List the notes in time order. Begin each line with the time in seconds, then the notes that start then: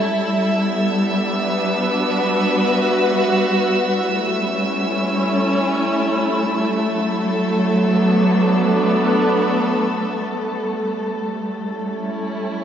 Already playing: G3 A3 C#4 E4 A4 E5 E6
0.51 B3
1.09 D4
1.38 B4
1.84 F#4
3.95 E4
4.02 A3
4.37 C#4
5.12 A4
6.92 F#3
7.75 B3
7.95 D4
10.19 G3
11.67 C#4 E4